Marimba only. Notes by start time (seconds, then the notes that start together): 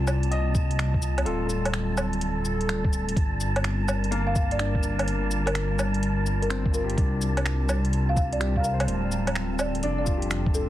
4.27 F5
4.52 D5
5.46 A#4
6.42 A#4
6.74 A#4
8.09 F5
8.17 F5
8.33 D5
8.57 F5
8.64 F5
9.59 D5
9.83 D5
9.98 D5
10.55 A4